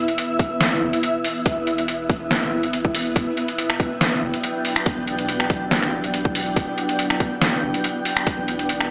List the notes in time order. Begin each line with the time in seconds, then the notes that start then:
Already playing: B3 E4 E5
0.08 closed hi-hat
0.18 closed hi-hat
0.39 kick, closed hi-hat
0.61 snare, closed hi-hat
0.82 F#1
0.93 closed hi-hat
1.03 closed hi-hat
1.24 open hi-hat
1.46 kick, closed hi-hat
1.57 E1
1.67 closed hi-hat
1.78 closed hi-hat
1.88 closed hi-hat
2.10 kick, closed hi-hat
2.31 snare, closed hi-hat
2.63 closed hi-hat
2.73 closed hi-hat
2.85 kick
2.95 open hi-hat
3.16 E1 F#3 D4 G5, kick, closed hi-hat
3.37 closed hi-hat
3.48 closed hi-hat
3.58 closed hi-hat
3.70 finger snap
3.80 kick, closed hi-hat
4.01 snare, closed hi-hat
4.22 F#1
4.34 closed hi-hat
4.44 closed hi-hat
4.65 open hi-hat
4.76 finger snap
4.86 kick, closed hi-hat
4.97 E1
5.07 closed hi-hat
5.19 closed hi-hat
5.29 closed hi-hat
5.40 finger snap
5.50 kick, closed hi-hat
5.71 snare, closed hi-hat
5.83 finger snap
6.04 closed hi-hat
6.14 closed hi-hat
6.25 kick
6.35 open hi-hat
6.56 E1, kick, closed hi-hat
6.78 closed hi-hat
6.89 closed hi-hat
6.99 closed hi-hat
7.10 finger snap
7.20 kick, closed hi-hat
7.42 snare, closed hi-hat
7.63 F#1
7.74 closed hi-hat
7.84 closed hi-hat
8.05 open hi-hat
8.17 finger snap
8.27 kick, closed hi-hat
8.38 E1
8.48 closed hi-hat
8.59 closed hi-hat
8.69 closed hi-hat
8.81 finger snap